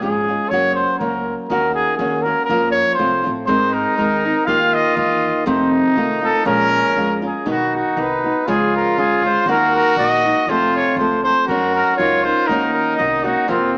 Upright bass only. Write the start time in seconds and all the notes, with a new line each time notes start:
0.03 G#1
0.51 F#1
1.01 C#2
1.50 D#2
1.99 D#2
2.49 F2
2.99 C2
3.27 A1
3.50 G#2
3.99 D#2
4.47 D#2
4.97 E2
5.47 F2
5.97 C2
6.46 A#1
6.97 F2
7.46 B1
7.97 C2
8.48 C#2
8.98 D2
9.46 D#2
9.97 A#1
10.47 F2
10.96 C#2
11.48 F#2
11.99 C#2
12.49 D#2
13.00 C2
13.50 F2